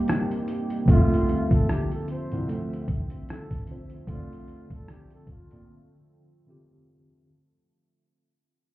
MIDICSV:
0, 0, Header, 1, 6, 480
1, 0, Start_track
1, 0, Key_signature, -1, "minor"
1, 0, Tempo, 800000
1, 527, Time_signature, 4, 2, 24, 8
1, 5246, End_track
2, 0, Start_track
2, 0, Title_t, "Flugelhorn"
2, 0, Program_c, 0, 56
2, 539, Note_on_c, 0, 65, 108
2, 890, Note_off_c, 0, 65, 0
2, 921, Note_on_c, 0, 69, 76
2, 1024, Note_on_c, 0, 67, 81
2, 1033, Note_off_c, 0, 69, 0
2, 1142, Note_off_c, 0, 67, 0
2, 1166, Note_on_c, 0, 69, 70
2, 1247, Note_off_c, 0, 69, 0
2, 1266, Note_on_c, 0, 72, 74
2, 1614, Note_off_c, 0, 72, 0
2, 1982, Note_on_c, 0, 69, 77
2, 2191, Note_off_c, 0, 69, 0
2, 2460, Note_on_c, 0, 65, 119
2, 2810, Note_off_c, 0, 65, 0
2, 2841, Note_on_c, 0, 69, 80
2, 2950, Note_on_c, 0, 67, 81
2, 2959, Note_off_c, 0, 69, 0
2, 3065, Note_off_c, 0, 67, 0
2, 3087, Note_on_c, 0, 69, 69
2, 3168, Note_off_c, 0, 69, 0
2, 3188, Note_on_c, 0, 65, 77
2, 3535, Note_off_c, 0, 65, 0
2, 5246, End_track
3, 0, Start_track
3, 0, Title_t, "Tine electric piano"
3, 0, Program_c, 1, 4
3, 0, Control_c, 1, 64, 127
3, 0, Note_on_c, 1, 60, 61
3, 0, Note_on_c, 1, 63, 71
3, 0, Note_on_c, 1, 67, 58
3, 0, Note_on_c, 1, 75, 72
3, 497, Note_off_c, 1, 63, 0
3, 504, Note_off_c, 1, 60, 0
3, 512, Note_off_c, 1, 67, 0
3, 513, Note_on_c, 1, 50, 65
3, 520, Note_off_c, 1, 75, 0
3, 528, Note_on_c, 1, 60, 60
3, 534, Control_c, 1, 64, 0
3, 545, Note_on_c, 1, 65, 59
3, 560, Note_on_c, 1, 76, 71
3, 628, Control_c, 1, 64, 127
3, 2176, Note_off_c, 1, 50, 0
3, 2184, Note_off_c, 1, 60, 0
3, 2192, Note_off_c, 1, 65, 0
3, 2199, Note_off_c, 1, 76, 0
3, 2204, Note_on_c, 1, 50, 51
3, 2212, Note_on_c, 1, 60, 48
3, 2221, Note_on_c, 1, 65, 45
3, 2229, Note_on_c, 1, 72, 58
3, 2432, Note_off_c, 1, 50, 0
3, 2439, Note_on_c, 1, 50, 67
3, 2447, Note_off_c, 1, 60, 0
3, 2454, Note_off_c, 1, 65, 0
3, 2454, Control_c, 1, 64, 0
3, 2454, Note_on_c, 1, 60, 62
3, 2458, Note_off_c, 1, 72, 0
3, 2467, Note_on_c, 1, 65, 56
3, 2484, Note_on_c, 1, 74, 78
3, 2546, Control_c, 1, 64, 127
3, 3859, Note_off_c, 1, 50, 0
3, 3866, Note_off_c, 1, 60, 0
3, 3873, Note_off_c, 1, 65, 0
3, 3878, Note_on_c, 1, 50, 64
3, 3881, Note_off_c, 1, 74, 0
3, 3887, Note_on_c, 1, 60, 58
3, 3894, Note_on_c, 1, 65, 53
3, 3901, Note_on_c, 1, 67, 72
3, 4362, Note_off_c, 1, 50, 0
3, 4367, Note_off_c, 1, 60, 0
3, 4370, Note_off_c, 1, 65, 0
3, 4374, Note_off_c, 1, 67, 0
3, 4374, Control_c, 1, 64, 0
3, 5246, End_track
4, 0, Start_track
4, 0, Title_t, "Ambient pad"
4, 0, Program_c, 2, 92
4, 0, Note_on_c, 2, 55, 69
4, 0, Note_on_c, 2, 58, 72
4, 0, Note_on_c, 2, 60, 71
4, 0, Note_on_c, 2, 63, 78
4, 0, Note_on_c, 2, 67, 83
4, 503, Note_off_c, 2, 63, 0
4, 504, Note_off_c, 2, 58, 0
4, 504, Note_off_c, 2, 67, 0
4, 505, Note_off_c, 2, 55, 0
4, 505, Note_off_c, 2, 60, 0
4, 524, Note_on_c, 2, 50, 78
4, 525, Note_on_c, 2, 53, 62
4, 525, Note_on_c, 2, 76, 81
4, 527, Note_on_c, 2, 57, 69
4, 527, Note_on_c, 2, 60, 71
4, 2427, Note_off_c, 2, 76, 0
4, 2428, Note_off_c, 2, 57, 0
4, 2428, Note_off_c, 2, 60, 0
4, 2442, Note_on_c, 2, 60, 66
4, 2444, Note_on_c, 2, 65, 92
4, 2447, Note_on_c, 2, 57, 72
4, 4341, Note_off_c, 2, 50, 0
4, 4342, Note_off_c, 2, 53, 0
4, 4345, Note_off_c, 2, 60, 0
4, 4346, Note_off_c, 2, 65, 0
4, 4348, Note_off_c, 2, 57, 0
4, 5246, End_track
5, 0, Start_track
5, 0, Title_t, "Grand piano"
5, 0, Program_c, 3, 0
5, 529, Note_on_c, 3, 38, 109
5, 984, Note_off_c, 3, 38, 0
5, 1391, Note_on_c, 3, 36, 78
5, 1483, Note_off_c, 3, 36, 0
5, 1488, Note_on_c, 3, 38, 96
5, 1712, Note_off_c, 3, 38, 0
5, 2448, Note_on_c, 3, 38, 110
5, 2904, Note_off_c, 3, 38, 0
5, 3309, Note_on_c, 3, 34, 89
5, 3401, Note_off_c, 3, 34, 0
5, 5246, End_track
6, 0, Start_track
6, 0, Title_t, "Drums"
6, 47, Note_on_c, 9, 42, 66
6, 56, Note_on_c, 9, 37, 98
6, 107, Note_off_c, 9, 42, 0
6, 116, Note_off_c, 9, 37, 0
6, 188, Note_on_c, 9, 42, 46
6, 248, Note_off_c, 9, 42, 0
6, 287, Note_on_c, 9, 42, 68
6, 347, Note_off_c, 9, 42, 0
6, 422, Note_on_c, 9, 42, 55
6, 482, Note_off_c, 9, 42, 0
6, 527, Note_on_c, 9, 36, 113
6, 537, Note_on_c, 9, 42, 97
6, 587, Note_off_c, 9, 36, 0
6, 597, Note_off_c, 9, 42, 0
6, 682, Note_on_c, 9, 42, 47
6, 742, Note_off_c, 9, 42, 0
6, 774, Note_on_c, 9, 42, 53
6, 834, Note_off_c, 9, 42, 0
6, 905, Note_on_c, 9, 36, 96
6, 911, Note_on_c, 9, 42, 45
6, 965, Note_off_c, 9, 36, 0
6, 971, Note_off_c, 9, 42, 0
6, 1016, Note_on_c, 9, 37, 111
6, 1018, Note_on_c, 9, 42, 86
6, 1076, Note_off_c, 9, 37, 0
6, 1078, Note_off_c, 9, 42, 0
6, 1149, Note_on_c, 9, 42, 47
6, 1209, Note_off_c, 9, 42, 0
6, 1248, Note_on_c, 9, 42, 60
6, 1308, Note_off_c, 9, 42, 0
6, 1390, Note_on_c, 9, 42, 39
6, 1450, Note_off_c, 9, 42, 0
6, 1496, Note_on_c, 9, 42, 90
6, 1556, Note_off_c, 9, 42, 0
6, 1641, Note_on_c, 9, 42, 41
6, 1701, Note_off_c, 9, 42, 0
6, 1728, Note_on_c, 9, 36, 95
6, 1729, Note_on_c, 9, 42, 80
6, 1788, Note_off_c, 9, 36, 0
6, 1789, Note_off_c, 9, 42, 0
6, 1860, Note_on_c, 9, 42, 55
6, 1920, Note_off_c, 9, 42, 0
6, 1973, Note_on_c, 9, 42, 72
6, 1982, Note_on_c, 9, 37, 105
6, 2033, Note_off_c, 9, 42, 0
6, 2042, Note_off_c, 9, 37, 0
6, 2105, Note_on_c, 9, 36, 83
6, 2108, Note_on_c, 9, 42, 54
6, 2165, Note_off_c, 9, 36, 0
6, 2168, Note_off_c, 9, 42, 0
6, 2203, Note_on_c, 9, 42, 68
6, 2263, Note_off_c, 9, 42, 0
6, 2338, Note_on_c, 9, 42, 51
6, 2398, Note_off_c, 9, 42, 0
6, 2444, Note_on_c, 9, 36, 122
6, 2449, Note_on_c, 9, 42, 90
6, 2504, Note_off_c, 9, 36, 0
6, 2509, Note_off_c, 9, 42, 0
6, 2597, Note_on_c, 9, 42, 53
6, 2657, Note_off_c, 9, 42, 0
6, 2688, Note_on_c, 9, 42, 53
6, 2748, Note_off_c, 9, 42, 0
6, 2822, Note_on_c, 9, 36, 91
6, 2825, Note_on_c, 9, 42, 49
6, 2882, Note_off_c, 9, 36, 0
6, 2885, Note_off_c, 9, 42, 0
6, 2930, Note_on_c, 9, 37, 121
6, 2933, Note_on_c, 9, 42, 83
6, 2990, Note_off_c, 9, 37, 0
6, 2993, Note_off_c, 9, 42, 0
6, 3062, Note_on_c, 9, 42, 45
6, 3122, Note_off_c, 9, 42, 0
6, 3161, Note_on_c, 9, 36, 85
6, 3163, Note_on_c, 9, 42, 57
6, 3221, Note_off_c, 9, 36, 0
6, 3223, Note_off_c, 9, 42, 0
6, 3306, Note_on_c, 9, 42, 41
6, 3366, Note_off_c, 9, 42, 0
6, 5246, End_track
0, 0, End_of_file